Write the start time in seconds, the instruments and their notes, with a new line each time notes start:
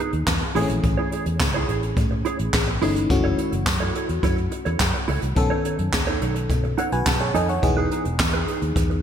Already playing: fm electric piano E3 B3 D#4 G#4
0.00 clean electric guitar D#4 G#4 B4
0.13 fingered electric bass D#2, muted clean electric guitar stroke, closed hi-hat
0.27 fingered electric bass E2, kick, snare, clap, tambourine
0.41 muted clean electric guitar stroke
0.55 fingered electric bass A1, fm electric piano E3 A3 C4 G#4, clean electric guitar E4 G#4 C#5, open hi-hat
0.62 fm electric piano C#4
0.69 fingered electric bass A#1, muted clean electric guitar stroke, closed hi-hat
0.83 fingered electric bass A1, muted clean electric guitar stroke, kick, closed hi-hat
0.97 clean electric guitar E4 G#4 C#5
1.12 clean electric guitar E4 G#4 C#5, closed hi-hat
1.26 fingered electric bass E2, muted clean electric guitar stroke, closed hi-hat
1.40 fingered electric bass C#2, muted clean electric guitar stroke, kick, snare, clap, tambourine
1.54 clean electric guitar E4 G#4 C#5
1.68 fingered electric bass A1, clean electric guitar E4 G#4 C#5, closed hi-hat
1.83 muted clean electric guitar stroke, closed hi-hat
1.97 fingered electric bass A2, muted clean electric guitar stroke, kick, closed hi-hat
2.11 muted clean electric guitar stroke
2.25 clean electric guitar E4 G#4 C#5, closed hi-hat
2.39 fingered electric bass A1, muted clean electric guitar stroke, closed hi-hat
2.53 fingered electric bass A1, kick, snare, clap, tambourine
2.68 muted clean electric guitar stroke
2.82 fingered electric bass G1, fm electric piano E3 A3 C#4 D#4, clean electric guitar E4 G#4 C#5, open hi-hat
2.96 muted clean electric guitar stroke, closed hi-hat
3.09 fingered electric bass F#1, fm electric piano E3 A3 C#4 F#4, muted clean electric guitar stroke, kick, closed hi-hat
3.24 clean electric guitar E4 A4 C#5
3.38 clean electric guitar E4 A4 C#5, closed hi-hat
3.52 fingered electric bass F#1, muted clean electric guitar stroke, closed hi-hat
3.66 fingered electric bass F#2, muted clean electric guitar stroke, kick, snare, clap, tambourine
3.80 clean electric guitar E4 A4 C#5
3.95 clean electric guitar E4 A4 C#5, closed hi-hat
4.09 fingered electric bass E2, muted clean electric guitar stroke, closed hi-hat
4.23 fingered electric bass F#2, clean electric guitar E4 A4 C#5, kick, closed hi-hat
4.37 muted clean electric guitar stroke, closed hi-hat
4.51 muted clean electric guitar stroke, closed hi-hat
4.65 fingered electric bass E2, clean electric guitar E4 A4 C#5, closed hi-hat
4.80 fingered electric bass F#2, kick, snare, clap, tambourine
4.94 muted clean electric guitar stroke, closed hi-hat
5.08 fingered electric bass C#2, clean electric guitar E4 A4 C#5, open hi-hat
5.22 fingered electric bass C2, muted clean electric guitar stroke, closed hi-hat
5.36 fingered electric bass B1, fm electric piano D#3 B3 C#4 A4, muted clean electric guitar stroke, kick, closed hi-hat
5.50 clean electric guitar D#4 A4 C#5
5.64 clean electric guitar D#4 A4 C#5, closed hi-hat
5.79 fingered electric bass F#2, muted clean electric guitar stroke, closed hi-hat
5.93 fingered electric bass D#2, muted clean electric guitar stroke, kick, snare, clap, tambourine
6.07 clean electric guitar D#4 A4 C#5, closed hi-hat
6.21 fingered electric bass B1, clean electric guitar D#4 A4 C#5, closed hi-hat
6.36 muted clean electric guitar stroke, closed hi-hat
6.49 fingered electric bass B2, muted clean electric guitar stroke, kick, closed hi-hat
6.64 muted clean electric guitar stroke, closed hi-hat
6.78 clean electric guitar D#4 A4 C#5, fm electric piano F#5, closed hi-hat
6.92 fingered electric bass B1, fm electric piano F#4 B4 G#5, muted clean electric guitar stroke, closed hi-hat
7.06 fingered electric bass B1, fm electric piano A5, kick, snare, clap, tambourine
7.20 fm electric piano G#4 C#5, muted clean electric guitar stroke
7.34 fingered electric bass F2, clean electric guitar D#4 A4 C#5, fm electric piano A4 D#5 G#5, closed hi-hat
7.49 fm electric piano C#5 F#5, muted clean electric guitar stroke, closed hi-hat
7.62 fingered electric bass E1, fm electric piano E3 B3 D#4 G#4, muted clean electric guitar stroke, kick, closed hi-hat
7.77 clean electric guitar D#4 G#4 B4
7.91 clean electric guitar D#4 G#4 B4, closed hi-hat
8.05 fingered electric bass E1, muted clean electric guitar stroke, closed hi-hat
8.19 fingered electric bass E2, muted clean electric guitar stroke, kick, snare, clap, tambourine
8.33 clean electric guitar D#4 G#4 B4
8.47 clean electric guitar D#4 G#4 B4, closed hi-hat
8.62 fingered electric bass D#2, muted clean electric guitar stroke, closed hi-hat
8.76 fingered electric bass E2, muted clean electric guitar stroke, kick, closed hi-hat
8.90 muted clean electric guitar stroke, closed hi-hat